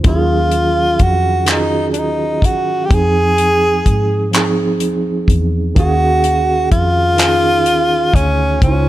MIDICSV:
0, 0, Header, 1, 5, 480
1, 0, Start_track
1, 0, Tempo, 952381
1, 23, Time_signature, 6, 3, 24, 8
1, 4480, End_track
2, 0, Start_track
2, 0, Title_t, "Tenor saxophone"
2, 0, Program_c, 0, 66
2, 40, Note_on_c, 0, 65, 103
2, 516, Note_on_c, 0, 66, 103
2, 523, Note_off_c, 0, 65, 0
2, 749, Note_off_c, 0, 66, 0
2, 762, Note_on_c, 0, 63, 89
2, 944, Note_off_c, 0, 63, 0
2, 968, Note_on_c, 0, 62, 60
2, 1001, Note_on_c, 0, 63, 86
2, 1008, Note_off_c, 0, 62, 0
2, 1238, Note_on_c, 0, 66, 84
2, 1245, Note_off_c, 0, 63, 0
2, 1437, Note_on_c, 0, 67, 84
2, 1444, Note_off_c, 0, 66, 0
2, 1485, Note_on_c, 0, 68, 117
2, 1492, Note_off_c, 0, 67, 0
2, 2194, Note_off_c, 0, 68, 0
2, 2918, Note_on_c, 0, 66, 110
2, 3371, Note_off_c, 0, 66, 0
2, 3385, Note_on_c, 0, 65, 116
2, 4110, Note_on_c, 0, 61, 91
2, 4118, Note_off_c, 0, 65, 0
2, 4347, Note_off_c, 0, 61, 0
2, 4351, Note_on_c, 0, 61, 105
2, 4480, Note_off_c, 0, 61, 0
2, 4480, End_track
3, 0, Start_track
3, 0, Title_t, "Tine electric piano"
3, 0, Program_c, 1, 4
3, 0, Control_c, 1, 64, 127
3, 19, Note_on_c, 1, 51, 81
3, 24, Note_on_c, 1, 61, 75
3, 30, Control_c, 1, 64, 0
3, 31, Note_on_c, 1, 65, 81
3, 39, Note_on_c, 1, 54, 78
3, 46, Note_on_c, 1, 67, 69
3, 67, Note_off_c, 1, 67, 0
3, 77, Note_on_c, 1, 68, 80
3, 103, Control_c, 1, 64, 127
3, 502, Note_off_c, 1, 51, 0
3, 505, Note_off_c, 1, 61, 0
3, 509, Note_off_c, 1, 65, 0
3, 513, Note_off_c, 1, 54, 0
3, 532, Note_off_c, 1, 68, 0
3, 733, Note_on_c, 1, 51, 65
3, 742, Note_on_c, 1, 61, 64
3, 750, Note_on_c, 1, 65, 61
3, 755, Note_on_c, 1, 66, 62
3, 762, Note_on_c, 1, 68, 72
3, 1219, Note_off_c, 1, 51, 0
3, 1224, Note_off_c, 1, 61, 0
3, 1228, Note_off_c, 1, 65, 0
3, 1230, Note_off_c, 1, 66, 0
3, 1234, Note_off_c, 1, 68, 0
3, 1455, Note_on_c, 1, 53, 72
3, 1464, Note_on_c, 1, 60, 72
3, 1470, Control_c, 1, 64, 0
3, 1471, Note_on_c, 1, 63, 67
3, 1480, Note_on_c, 1, 68, 84
3, 1569, Control_c, 1, 64, 127
3, 1941, Note_off_c, 1, 53, 0
3, 1945, Note_off_c, 1, 60, 0
3, 1948, Note_off_c, 1, 63, 0
3, 1953, Note_off_c, 1, 68, 0
3, 2173, Note_on_c, 1, 53, 76
3, 2183, Note_on_c, 1, 60, 67
3, 2191, Note_on_c, 1, 63, 71
3, 2200, Note_on_c, 1, 68, 84
3, 2660, Note_off_c, 1, 53, 0
3, 2664, Note_off_c, 1, 60, 0
3, 2669, Note_off_c, 1, 63, 0
3, 2673, Note_off_c, 1, 68, 0
3, 2898, Note_on_c, 1, 51, 78
3, 2903, Note_on_c, 1, 61, 74
3, 2909, Control_c, 1, 64, 0
3, 2910, Note_on_c, 1, 77, 71
3, 2918, Note_on_c, 1, 66, 73
3, 2923, Note_on_c, 1, 68, 89
3, 2989, Control_c, 1, 64, 127
3, 3382, Note_off_c, 1, 51, 0
3, 3384, Note_off_c, 1, 61, 0
3, 3388, Note_off_c, 1, 77, 0
3, 3392, Note_off_c, 1, 66, 0
3, 3395, Note_off_c, 1, 68, 0
3, 3612, Note_on_c, 1, 51, 68
3, 3619, Note_on_c, 1, 61, 58
3, 3625, Note_on_c, 1, 65, 57
3, 3634, Note_on_c, 1, 63, 58
3, 3642, Note_on_c, 1, 68, 66
3, 4099, Note_off_c, 1, 51, 0
3, 4103, Note_off_c, 1, 61, 0
3, 4106, Note_off_c, 1, 65, 0
3, 4110, Note_off_c, 1, 63, 0
3, 4114, Note_off_c, 1, 68, 0
3, 4332, Note_on_c, 1, 49, 79
3, 4341, Note_on_c, 1, 72, 69
3, 4350, Control_c, 1, 64, 0
3, 4350, Note_on_c, 1, 63, 72
3, 4360, Note_on_c, 1, 64, 70
3, 4384, Note_off_c, 1, 64, 0
3, 4394, Note_on_c, 1, 65, 88
3, 4452, Control_c, 1, 64, 127
3, 4480, Note_off_c, 1, 49, 0
3, 4480, Note_off_c, 1, 63, 0
3, 4480, Note_off_c, 1, 65, 0
3, 4480, Note_off_c, 1, 72, 0
3, 4480, End_track
4, 0, Start_track
4, 0, Title_t, "Fingered electric bass"
4, 0, Program_c, 2, 33
4, 25, Note_on_c, 2, 39, 109
4, 484, Note_off_c, 2, 39, 0
4, 507, Note_on_c, 2, 41, 80
4, 990, Note_off_c, 2, 41, 0
4, 990, Note_on_c, 2, 39, 100
4, 1222, Note_off_c, 2, 39, 0
4, 1222, Note_on_c, 2, 42, 84
4, 1442, Note_off_c, 2, 42, 0
4, 1467, Note_on_c, 2, 41, 107
4, 1925, Note_off_c, 2, 41, 0
4, 1949, Note_on_c, 2, 44, 76
4, 2429, Note_off_c, 2, 44, 0
4, 2429, Note_on_c, 2, 39, 93
4, 2646, Note_off_c, 2, 39, 0
4, 2663, Note_on_c, 2, 40, 76
4, 2883, Note_off_c, 2, 40, 0
4, 2907, Note_on_c, 2, 39, 110
4, 3365, Note_off_c, 2, 39, 0
4, 3387, Note_on_c, 2, 41, 86
4, 3869, Note_off_c, 2, 41, 0
4, 3869, Note_on_c, 2, 39, 100
4, 4086, Note_off_c, 2, 39, 0
4, 4103, Note_on_c, 2, 38, 87
4, 4323, Note_off_c, 2, 38, 0
4, 4345, Note_on_c, 2, 37, 98
4, 4480, Note_off_c, 2, 37, 0
4, 4480, End_track
5, 0, Start_track
5, 0, Title_t, "Drums"
5, 21, Note_on_c, 9, 42, 70
5, 23, Note_on_c, 9, 36, 125
5, 72, Note_off_c, 9, 42, 0
5, 73, Note_off_c, 9, 36, 0
5, 259, Note_on_c, 9, 42, 52
5, 310, Note_off_c, 9, 42, 0
5, 501, Note_on_c, 9, 42, 50
5, 503, Note_on_c, 9, 36, 90
5, 551, Note_off_c, 9, 42, 0
5, 553, Note_off_c, 9, 36, 0
5, 738, Note_on_c, 9, 42, 82
5, 748, Note_on_c, 9, 39, 127
5, 789, Note_off_c, 9, 42, 0
5, 799, Note_off_c, 9, 39, 0
5, 978, Note_on_c, 9, 42, 53
5, 1028, Note_off_c, 9, 42, 0
5, 1220, Note_on_c, 9, 36, 75
5, 1231, Note_on_c, 9, 42, 54
5, 1271, Note_off_c, 9, 36, 0
5, 1281, Note_off_c, 9, 42, 0
5, 1465, Note_on_c, 9, 36, 123
5, 1467, Note_on_c, 9, 42, 75
5, 1515, Note_off_c, 9, 36, 0
5, 1517, Note_off_c, 9, 42, 0
5, 1704, Note_on_c, 9, 42, 51
5, 1755, Note_off_c, 9, 42, 0
5, 1945, Note_on_c, 9, 36, 83
5, 1945, Note_on_c, 9, 42, 52
5, 1995, Note_off_c, 9, 36, 0
5, 1996, Note_off_c, 9, 42, 0
5, 2184, Note_on_c, 9, 42, 77
5, 2194, Note_on_c, 9, 39, 122
5, 2234, Note_off_c, 9, 42, 0
5, 2244, Note_off_c, 9, 39, 0
5, 2421, Note_on_c, 9, 42, 57
5, 2471, Note_off_c, 9, 42, 0
5, 2660, Note_on_c, 9, 36, 80
5, 2670, Note_on_c, 9, 42, 51
5, 2711, Note_off_c, 9, 36, 0
5, 2720, Note_off_c, 9, 42, 0
5, 2904, Note_on_c, 9, 36, 127
5, 2905, Note_on_c, 9, 42, 74
5, 2955, Note_off_c, 9, 36, 0
5, 2956, Note_off_c, 9, 42, 0
5, 3144, Note_on_c, 9, 42, 53
5, 3195, Note_off_c, 9, 42, 0
5, 3385, Note_on_c, 9, 36, 85
5, 3385, Note_on_c, 9, 42, 52
5, 3435, Note_off_c, 9, 36, 0
5, 3435, Note_off_c, 9, 42, 0
5, 3620, Note_on_c, 9, 42, 84
5, 3630, Note_on_c, 9, 39, 119
5, 3671, Note_off_c, 9, 42, 0
5, 3681, Note_off_c, 9, 39, 0
5, 3860, Note_on_c, 9, 42, 52
5, 3911, Note_off_c, 9, 42, 0
5, 4100, Note_on_c, 9, 36, 79
5, 4111, Note_on_c, 9, 42, 52
5, 4151, Note_off_c, 9, 36, 0
5, 4162, Note_off_c, 9, 42, 0
5, 4343, Note_on_c, 9, 36, 121
5, 4345, Note_on_c, 9, 42, 70
5, 4394, Note_off_c, 9, 36, 0
5, 4395, Note_off_c, 9, 42, 0
5, 4480, End_track
0, 0, End_of_file